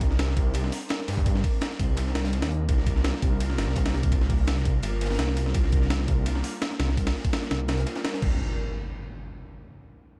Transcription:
Already playing: detuned saw bass C2, analog synth pad G3 C4 D4 D#4 A#4
0.01 kick, closed hi-hat, ride
0.11 snare
0.19 snare, closed hi-hat, ride
0.28 snare
0.36 detuned saw bass C2, analog synth pad G3 C4 D4 D#4 A#4, kick, closed hi-hat, ride
0.54 closed hi-hat, ride
0.64 snare
0.72 snare, closed hi-hat, open hi-hat
0.89 snare, closed hi-hat, ride
1.00 snare, closed hi-hat
1.08 detuned saw bass G2, snare, closed hi-hat, ride
1.12 snare, closed hi-hat
1.17 kick, snare, closed hi-hat
1.25 analog synth pad G3 C4 D4 D#4 A#4, kick, closed hi-hat, ride
1.35 snare
1.44 kick, open hi-hat, ride
1.61 snare, closed hi-hat, ride
1.71 snare, closed hi-hat
1.79 detuned saw bass C2, analog synth pad G3 C4 D4 D#4 A#4, kick, closed hi-hat, ride
1.97 snare, closed hi-hat, ride
2.07 snare
2.15 detuned saw bass C2, snare, closed hi-hat, ride
2.24 snare, closed hi-hat
2.33 snare, ride
2.42 detuned saw bass D#2, snare, closed hi-hat, ride
2.51 closed hi-hat
2.68 detuned saw bass C2, analog synth pad G3 A#3 D4 F4 A#4, kick, closed hi-hat, ride
2.78 snare
2.86 kick, closed hi-hat, ride
2.96 snare
3.04 snare, closed hi-hat, ride
3.13 snare
3.22 detuned saw bass C2, analog synth pad G3 A#3 D4 F4 A#4, kick, closed hi-hat, ride
3.40 closed hi-hat, ride
3.50 snare
3.58 detuned saw bass G1, snare, closed hi-hat, ride
3.67 detuned saw bass C2, snare
3.76 kick, snare, closed hi-hat, ride
3.86 snare, closed hi-hat, ride
3.94 snare, closed hi-hat
4.03 kick, closed hi-hat, ride
4.11 analog synth pad G3 A#3 D4 F4 A#4, kick, closed hi-hat, ride
4.21 snare
4.30 kick, open hi-hat, ride
4.47 snare, closed hi-hat, ride
4.56 snare, closed hi-hat
4.65 detuned saw bass C2, analog synth pad G3 A#3 D4 F4 A#4, kick, closed hi-hat, ride
4.83 detuned saw bass G1, closed hi-hat, ride
5.01 snare, closed hi-hat, ride
5.05 snare, closed hi-hat
5.10 snare, closed hi-hat
5.14 snare, closed hi-hat
5.19 detuned saw bass C2, snare, closed hi-hat, ride
5.28 snare
5.37 closed hi-hat, ride
5.46 snare
5.54 analog synth pad G3 A#3 D4 F4 A#4, kick, closed hi-hat, ride
5.64 snare
5.72 kick, closed hi-hat, ride
5.82 snare
5.90 snare, closed hi-hat, ride
5.99 snare
6.07 detuned saw bass C2, analog synth pad G3 A#3 D4 F4 A#4, kick, closed hi-hat, ride
6.26 closed hi-hat, ride
6.35 snare
6.44 snare, closed hi-hat, open hi-hat
6.62 snare, closed hi-hat, ride
6.71 snare, closed hi-hat
6.79 detuned saw bass C2, snare, ride
6.89 snare
6.97 analog synth pad G3 A#3 D4 F4 A#4, kick, closed hi-hat, ride
7.07 snare, ride
7.15 snare, open hi-hat
7.25 kick, ride
7.33 snare, closed hi-hat, ride
7.43 snare, closed hi-hat
7.51 detuned saw bass C2, analog synth pad G3 A#3 D4 F4 A#4, snare, ride
7.68 snare, closed hi-hat, ride
7.77 snare, closed hi-hat
7.86 snare, closed hi-hat, ride
7.95 snare, closed hi-hat
8.05 snare, closed hi-hat, ride
8.14 snare, closed hi-hat
8.22 detuned saw bass C2, kick, crash, impact

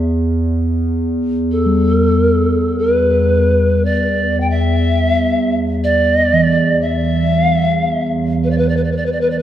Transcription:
Already playing: ambient pad E2, singing bowl B3
1.51 pan flute A4
1.66 singing bowl G3
1.94 pan flute A#4
2.06 pan flute A4
2.18 pan flute A#4
2.30 pan flute A4
2.78 pan flute B4
3.84 pan flute D5
4.40 pan flute G5
4.50 pan flute E5
5.83 pan flute D5
6.33 singing bowl E3
6.81 pan flute E5
7.39 pan flute F5
7.55 pan flute E5
7.72 pan flute F5
7.88 pan flute E5
8.44 pan flute B4
8.50 pan flute D5
8.57 pan flute B4
8.68 pan flute D5
8.76 pan flute B4
8.83 pan flute D5
8.91 ambient pad E2, pan flute B4
8.96 pan flute D5
9.05 pan flute B4
9.12 pan flute D5
9.20 pan flute B4
9.30 pan flute D5
9.38 pan flute B4

